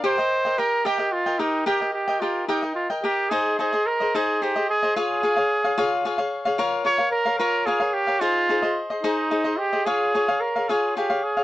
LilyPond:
<<
  \new Staff \with { instrumentName = "Cavaquinho" } { \time 6/8 \key ees \major \tempo 4. = 73 <g' bes' ees'' g''>16 <bes' ees'' g''>8 <bes' ees'' g''>16 <g' bes' ees'' g''>8 <g' bes' ees'' g''>16 <bes' ees'' g''>8 <bes' ees'' g''>16 <g' bes' ees'' g''>8 | <g' bes' ees'' g''>16 <bes' ees'' g''>8 <bes' ees'' g''>16 <g' bes' ees'' g''>8 <g' bes' ees'' g''>16 <bes' ees'' g''>8 <bes' ees'' g''>16 <g' bes' ees'' g''>8 | \key aes \major <ees' aes' c'' ees''>8 <ees' aes' c'' ees''>16 <aes' c'' ees''>8 <aes' c'' ees''>16 <ees' aes' c'' ees''>8 <ees' aes' c'' ees''>16 <aes' c'' ees''>8 <aes' c'' ees''>16 | <f' aes' des'' f''>8 <f' aes' des'' f''>16 <aes' des'' f''>8 <aes' des'' f''>16 <f' aes' des'' f''>8 <f' aes' des'' f''>16 <aes' des'' f''>8 <aes' des'' f''>16 |
<f' bes' des'' f''>8 <f' bes' des'' f''>16 <bes' des'' f''>8 <bes' des'' f''>16 <f' bes' des'' f''>8 <f' bes' des'' f''>16 <bes' des'' f''>8 <bes' des'' f''>16 | <ees' aes' c'' ees''>8 <ees' aes' c'' ees''>16 <aes' c'' ees''>8 <aes' c'' ees''>16 <ees' aes' c'' ees''>8 <ees' aes' c'' ees''>16 <aes' c'' ees''>8 <aes' c'' ees''>16 | <f' aes' des'' f''>8 <f' aes' des'' f''>16 <aes' des'' f''>8 <aes' des'' f''>16 <f' aes' des'' f''>8 <f' aes' des'' f''>16 <aes' des'' f''>8 <aes' des'' f''>16 | }
  \new Staff \with { instrumentName = "Trumpet" } { \time 6/8 \key ees \major c''4 bes'8 g'8 f'8 ees'8 | g'8 g'8 f'8 ees'8 f'8 g'8 | \key aes \major aes'8 aes'8 bes'8 aes'8 g'8 aes'8 | aes'2~ aes'8 r8 |
r8 des''8 bes'8 bes'8 aes'8 g'8 | f'4 r8 ees'4 g'8 | aes'4 bes'8 aes'8 g'8 aes'8 | }
>>